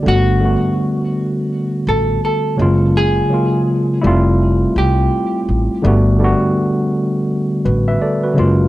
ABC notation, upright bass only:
X:1
M:4/4
L:1/16
Q:"Swing 16ths" 1/4=83
K:G
V:1 name="Upright bass" clef=bass
G,,,3 z6 z A,,,2 z2 F,,,2- | F,,,2 z4 =F,,,4 C,,2 z2 A,,, z | G,,,3 z6 z A,,,2 z2 F,,,2 |]